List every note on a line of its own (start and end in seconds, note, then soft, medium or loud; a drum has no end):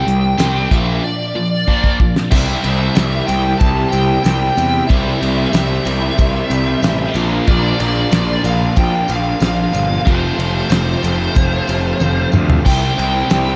0.00 0.70 G3 medium
0.00 0.70 C4 medium
0.00 0.70 E4 medium
0.00 0.70 C5 medium
0.00 0.74 G5 loud
0.06 0.34 C2 medium
0.06 0.35 C3 medium
0.06 0.36 G3 medium
0.06 closed hi-hat medium
0.38 0.66 C2 medium
0.38 0.68 C3 medium
0.38 0.69 G3 medium
0.38 0.69 C4 loud
0.38 snare loud
0.38 closed hi-hat loud
0.38 tambourine medium
0.69 0.98 A#1 medium
0.69 1.01 A#2 medium
0.69 1.01 F3 medium
0.69 2.30 A#3 medium
0.69 1.01 A#3 loud
0.69 2.30 D4 medium
0.69 2.29 F4 medium
0.69 2.30 D5 medium
0.69 1.04 E5 medium
0.69 kick medium
0.69 closed hi-hat medium
1.03 1.32 A#2 medium
1.03 1.32 F3 medium
1.03 1.96 D5 medium
1.35 1.64 A#2 medium
1.35 1.64 F3 medium
1.68 1.98 A#2 medium
1.68 1.98 F3 medium
1.68 1.98 A#3 loud
1.68 kick medium
1.84 kick medium
2.00 2.29 A#2 medium
2.00 2.29 F3 medium
2.00 kick medium
2.16 snare medium
2.31 2.56 C2 medium
2.31 4.87 C3 medium
2.31 2.63 C3 medium
2.31 2.63 G3 loud
2.31 4.88 G3 medium
2.31 2.64 C4 medium
2.31 4.87 C4 medium
2.31 4.88 C4 medium
2.31 4.87 E4 medium
2.31 2.64 E4 loud
2.31 4.87 G4 medium
2.31 2.65 G4 medium
2.31 2.63 E5 medium
2.31 4.87 E5 medium
2.31 kick loud
2.31 crash loud
2.31 tambourine soft
2.63 2.88 C2 medium
2.63 2.95 C3 medium
2.63 2.95 G3 medium
2.63 2.96 C4 medium
2.63 2.96 E4 medium
2.63 2.97 G4 medium
2.63 3.31 E5 medium
2.63 ride medium
2.63 tambourine soft
2.95 3.20 C2 medium
2.95 3.27 C3 medium
2.95 3.27 G3 medium
2.95 3.28 C4 medium
2.95 3.28 E4 medium
2.95 3.29 G4 medium
2.95 snare loud
2.95 ride medium
2.95 tambourine loud
3.27 3.52 C2 medium
3.27 3.59 C3 medium
3.27 3.59 G3 medium
3.27 3.60 C4 medium
3.27 3.60 E4 medium
3.27 3.61 G4 medium
3.27 3.58 G5 medium
3.27 ride medium
3.27 tambourine medium
3.58 3.85 C2 medium
3.58 3.91 C3 medium
3.58 3.91 G3 medium
3.58 3.92 C4 medium
3.58 3.92 E4 loud
3.58 3.93 G4 medium
3.58 3.89 A5 loud
3.58 kick loud
3.58 ride medium
3.58 tambourine medium
3.89 4.17 C2 medium
3.89 4.23 C3 medium
3.89 4.24 G3 medium
3.89 4.24 C4 medium
3.89 4.25 E4 medium
3.89 4.22 G5 loud
3.89 ride medium
3.89 tambourine medium
3.94 4.25 G4 loud
4.23 4.49 C2 medium
4.23 4.55 C3 medium
4.23 4.56 G3 medium
4.23 4.56 C4 medium
4.23 4.57 E4 medium
4.23 4.57 G4 loud
4.23 4.91 G5 medium
4.23 snare loud
4.23 ride loud
4.23 tambourine medium
4.57 4.81 E2 medium
4.57 4.88 C3 medium
4.57 4.88 G3 medium
4.57 4.89 C4 medium
4.57 4.89 E4 medium
4.57 4.90 G4 medium
4.57 ride medium
4.57 tambourine medium
4.87 5.13 C2 medium
4.87 7.13 C3 medium
4.87 5.20 C3 medium
4.87 5.21 G3 medium
4.87 7.14 G3 medium
4.87 5.21 C4 loud
4.87 5.22 E4 loud
4.87 5.12 F4 medium
4.87 5.22 G4 loud
4.87 5.11 G#4 medium
4.87 5.11 C#5 medium
4.87 5.51 E5 medium
4.87 5.11 F5 medium
4.87 kick loud
4.87 ride medium
4.87 tambourine soft
4.91 7.14 C4 medium
5.12 7.14 E4 medium
5.12 7.14 G4 medium
5.12 7.14 C5 medium
5.12 7.14 E5 medium
5.21 5.46 C2 medium
5.21 5.52 C3 medium
5.21 5.53 G3 medium
5.21 5.53 C4 medium
5.21 5.54 E4 medium
5.21 5.54 G4 medium
5.21 ride medium
5.21 tambourine soft
5.53 5.78 C2 medium
5.53 5.84 C3 medium
5.53 5.84 G3 medium
5.53 5.85 C4 medium
5.53 5.85 E4 medium
5.53 5.86 G4 medium
5.53 7.11 E5 medium
5.53 snare loud
5.53 ride medium
5.53 tambourine loud
5.85 6.10 C2 medium
5.85 6.17 C3 medium
5.85 6.18 G3 medium
5.85 6.18 C4 medium
5.85 6.19 E4 medium
5.85 6.19 G4 medium
5.85 ride medium
5.85 tambourine medium
6.18 6.42 C2 medium
6.18 6.49 C3 medium
6.18 6.50 G3 medium
6.18 6.50 C4 medium
6.18 6.50 E4 medium
6.18 6.51 G4 loud
6.18 kick loud
6.18 ride medium
6.18 tambourine medium
6.50 6.74 C2 medium
6.50 6.81 C3 medium
6.50 6.81 G3 medium
6.50 6.82 C4 medium
6.50 6.82 E4 loud
6.50 6.82 G4 medium
6.50 ride medium
6.50 tambourine medium
6.82 7.07 A1 medium
6.82 7.13 C3 medium
6.82 7.13 G3 medium
6.82 7.13 C4 loud
6.82 7.14 E4 loud
6.82 7.14 G4 medium
6.82 snare loud
6.82 ride medium
6.82 tambourine medium
7.14 7.39 A#1 loud
7.14 7.46 A#2 loud
7.14 9.72 A#2 medium
7.14 7.47 F3 loud
7.14 9.72 F3 medium
7.14 7.47 A#3 loud
7.14 9.73 A#3 loud
7.14 10.03 D4 medium
7.14 7.47 D4 medium
7.14 10.03 F4 medium
7.14 7.48 F4 loud
7.14 10.03 A#4 medium
7.14 10.03 F5 medium
7.14 ride medium
7.14 tambourine medium
7.47 7.72 A#1 medium
7.47 7.77 A#2 loud
7.47 7.79 F3 loud
7.47 7.78 A#3 medium
7.47 7.79 D4 loud
7.47 7.80 F4 loud
7.47 7.79 D5 loud
7.47 kick medium
7.47 ride medium
7.47 tambourine soft
7.79 8.04 A#1 medium
7.79 8.10 A#2 medium
7.79 8.11 F3 medium
7.79 8.11 A#3 medium
7.79 8.11 D4 medium
7.79 8.13 F4 loud
7.79 8.41 D5 medium
7.79 ride medium
7.79 tambourine soft
8.11 8.36 A#1 medium
8.11 8.42 A#2 medium
8.11 8.44 F3 medium
8.11 8.43 A#3 medium
8.11 8.44 D4 loud
8.11 8.45 F4 medium
8.11 snare loud
8.11 ride loud
8.11 tambourine loud
8.43 8.68 A#1 medium
8.43 8.75 A#2 medium
8.43 8.75 F3 medium
8.43 8.76 A#3 medium
8.43 8.76 D4 medium
8.43 8.76 F4 medium
8.43 8.79 F5 medium
8.43 ride medium
8.43 tambourine medium
8.76 9.01 A#1 medium
8.76 9.07 A#2 medium
8.76 9.07 F3 loud
8.76 9.08 A#3 medium
8.76 9.08 D4 loud
8.76 9.09 F4 loud
8.76 9.08 G5 loud
8.76 kick loud
8.76 ride medium
8.76 tambourine medium
9.08 9.33 A#1 medium
9.08 9.40 A#2 medium
9.08 9.40 F3 medium
9.08 9.40 A#3 medium
9.08 9.41 D4 medium
9.08 9.41 F4 medium
9.08 ride medium
9.08 tambourine medium
9.12 9.43 F5 loud
9.40 9.65 A#1 loud
9.40 9.71 A#2 medium
9.40 9.72 F3 loud
9.40 9.72 A#3 medium
9.40 9.73 D4 medium
9.40 9.73 F4 medium
9.40 10.04 F5 loud
9.40 snare loud
9.40 ride medium
9.40 tambourine medium
9.72 9.98 G1 medium
9.72 10.04 A#2 medium
9.72 10.04 F3 medium
9.72 10.04 A#3 medium
9.72 10.04 D4 medium
9.72 10.05 F4 loud
9.72 ride medium
9.72 tambourine medium
10.05 10.30 F1 medium
10.05 12.63 F2 medium
10.05 10.37 F2 loud
10.05 10.37 C3 loud
10.05 12.64 C3 medium
10.05 10.38 F3 loud
10.05 12.64 F3 loud
10.05 10.38 A3 medium
10.05 12.63 C4 medium
10.05 10.39 C4 loud
10.05 12.63 F4 medium
10.05 10.39 F4 loud
10.05 12.63 A4 medium
10.05 10.71 C5 loud
10.05 12.63 F5 medium
10.05 kick loud
10.05 ride medium
10.05 tambourine soft
10.38 10.62 F1 medium
10.38 10.69 F2 medium
10.38 10.70 C3 medium
10.38 10.70 F3 medium
10.38 10.70 A3 medium
10.38 10.71 C4 medium
10.38 10.71 F4 medium
10.38 ride medium
10.38 tambourine soft
10.70 10.94 F1 medium
10.70 11.02 F2 medium
10.70 11.02 C3 medium
10.70 11.03 F3 medium
10.70 11.03 A3 medium
10.70 11.04 C4 medium
10.70 11.04 F4 medium
10.70 12.29 C5 medium
10.70 snare loud
10.70 ride loud
10.70 tambourine loud
11.03 11.27 F1 medium
11.03 11.34 F2 medium
11.03 11.34 C3 medium
11.03 11.35 F3 medium
11.03 11.35 A3 medium
11.03 11.36 C4 medium
11.03 11.36 F4 medium
11.03 ride medium
11.03 tambourine medium
11.35 11.60 F1 medium
11.35 11.67 F2 medium
11.35 11.67 C3 loud
11.35 11.68 F3 medium
11.35 11.68 A3 medium
11.35 11.69 C4 medium
11.35 11.69 F4 medium
11.35 kick loud
11.35 ride loud
11.35 tambourine medium
11.67 11.92 F1 medium
11.67 11.99 F2 medium
11.67 11.99 C3 medium
11.67 12.00 F3 medium
11.67 12.00 A3 medium
11.67 12.01 C4 loud
11.67 12.01 F4 medium
11.67 ride medium
11.67 tambourine medium
12.00 12.25 F1 medium
12.00 12.31 F2 medium
12.00 12.31 C3 medium
12.00 12.32 F3 medium
12.00 12.32 A3 medium
12.00 12.34 C4 medium
12.00 12.33 F4 medium
12.00 high tom medium
12.00 tambourine medium
12.32 12.57 D2 medium
12.32 12.63 F2 medium
12.32 12.63 C3 medium
12.32 12.63 F3 medium
12.32 12.64 A3 medium
12.32 12.65 C4 medium
12.32 12.64 F4 medium
12.32 mid tom medium
12.32 tambourine medium
12.50 floor tom medium
12.65 12.89 C2 medium
12.65 13.56 C3 medium
12.65 12.97 C3 loud
12.65 12.98 G3 loud
12.65 13.56 G3 medium
12.65 13.56 C4 medium
12.65 12.98 C4 medium
12.65 13.56 C4 medium
12.65 13.56 E4 medium
12.65 12.99 E4 loud
12.65 13.56 G4 medium
12.65 13.56 E5 medium
12.65 12.96 G5 medium
12.65 kick loud
12.65 crash loud
12.65 tambourine soft
12.98 13.22 C2 medium
12.98 13.30 C3 medium
12.98 13.30 G3 medium
12.98 13.31 C4 medium
12.98 13.31 E4 loud
12.98 13.56 G5 medium
12.98 ride medium
12.98 tambourine soft
13.30 13.54 C2 medium
13.30 13.56 C3 medium
13.30 13.56 G3 medium
13.30 13.56 C4 medium
13.30 13.56 E4 medium
13.30 snare loud
13.30 ride medium
13.30 tambourine medium